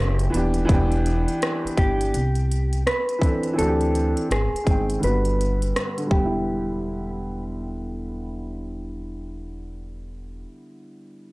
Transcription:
Already playing: F#1 G4
0.19 closed hi-hat
0.30 D#1 E3 B3
0.34 D4 G4, closed hi-hat
0.54 closed hi-hat
0.65 E3 B3
0.69 E1 D4 G4, kick, closed hi-hat
0.92 closed hi-hat
1.06 closed hi-hat
1.28 closed hi-hat
1.42 cross-stick, closed hi-hat
1.65 muted upright bass stroke, closed hi-hat
1.78 G1 G4, kick, closed hi-hat
2.01 closed hi-hat
2.14 C2, closed hi-hat
2.35 closed hi-hat
2.52 closed hi-hat
2.73 closed hi-hat
2.87 B4, cross-stick, closed hi-hat
3.09 closed hi-hat
3.19 E3 C4, kick
3.23 D4 A4, closed hi-hat
3.43 closed hi-hat
3.53 E3 C4
3.58 D2 D4 F#4 A4, closed hi-hat
3.67 G4
3.81 closed hi-hat
3.95 closed hi-hat
4.17 closed hi-hat
4.30 G#1 G#4, cross-stick, closed hi-hat
4.53 muted upright bass stroke, closed hi-hat
4.64 G1 D#3 G#3, kick, closed hi-hat
4.68 C4 G5
4.90 closed hi-hat
4.98 D3 G3
5.03 G1 B3 F#4 B4, closed hi-hat
5.25 closed hi-hat
5.41 closed hi-hat
5.62 closed hi-hat
5.76 cross-stick, closed hi-hat
5.97 D3, closed hi-hat
6.07 G3
6.11 E1 G4, kick
6.16 B3
6.25 E4

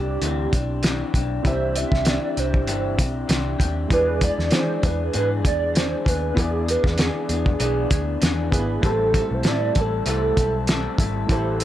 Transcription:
Already playing: C2 C4 D4 E4 G4 D5
0.22 D2 C3 E3 C4 D4 G4, closed hi-hat
0.51 B1 C4 D4 G4, kick, closed hi-hat
0.82 E3 C4 D4 G4, snare, closed hi-hat
1.14 B1 C4 D4 G4, kick, closed hi-hat
1.43 C2 C3 E3 C4 E4 G4, kick, closed hi-hat
1.47 D4 G4 C5 E5
1.76 C4 D4 G4 E5, closed hi-hat
1.92 C2, kick, snare
2.05 E3 C4 D4 D5, snare, closed hi-hat
2.09 G4
2.37 C2 C4 D4 G4 C5, closed hi-hat
2.54 kick
2.67 G1 C3 E3 C4 D4 G4, closed hi-hat
2.98 B1 C4 D4 G4, kick, closed hi-hat
3.28 C2 E3 C4 D4 G4, snare, closed hi-hat
3.59 D#2 C4 D4 G4, kick, closed hi-hat
3.88 E2 E3 G#3 B3 D4 E4 G4, kick, closed hi-hat
3.92 G#4 B4 D5
3.98 G#4
4.21 B3 D4 G#4 D5, kick, closed hi-hat
4.39 E2, snare
4.51 E3 D4 G#4 C5, snare, closed hi-hat
4.82 E2 B3 D4 G#4 B4, kick, closed hi-hat
5.13 G#2 E3 B3 D4 G#4 B4, closed hi-hat
5.42 E2 B3 D4 G#4, kick, closed hi-hat
5.46 D5
5.74 E3 D4 G#4 C5, snare, closed hi-hat
6.05 D#2 B3 D4 G#4 B4, kick, closed hi-hat
6.34 E2 E3 B3 D4 E4 G#4, kick, closed hi-hat
6.39 G#4 D5
6.66 B3 D4 G#4 B4, closed hi-hat
6.84 E2, kick, snare
6.98 E3 B3 D4 G#4, snare, closed hi-hat
7.29 E2 B3 D4 G#4, closed hi-hat
7.46 kick
7.59 B1 E3 B3 D4 G#4, closed hi-hat
7.90 D2 B3 D4 G#4, kick, closed hi-hat
8.21 E2 E3 B3 D4 G#4, snare, closed hi-hat
8.51 G#1 B3 D4 E4 G#4 B4, kick, closed hi-hat
8.81 A1 A2 E3 G3 A3 C4 E4 G4 A4, kick, closed hi-hat
8.85 A4 C5
9.13 G3 C4 E4 A4, kick, closed hi-hat
9.31 B1 C5
9.43 A2 G3 C4 E4 A4, snare, closed hi-hat
9.48 D5
9.75 A1 G3 C4 E4 A4, kick, closed hi-hat
9.80 A4
10.06 C2 A2 E3 G3 C4 E4 A4, closed hi-hat
10.37 B1 G3 C4 E4 A4, kick, closed hi-hat
10.67 G3 C4 E4 A4, snare, closed hi-hat
10.98 G#1 G3 C4 E4 A4, kick, closed hi-hat
11.27 A1 A2 E3 G3 A3 E4 G4, kick, closed hi-hat
11.31 C4 E4 A4 C5
11.59 E4 A4, closed hi-hat

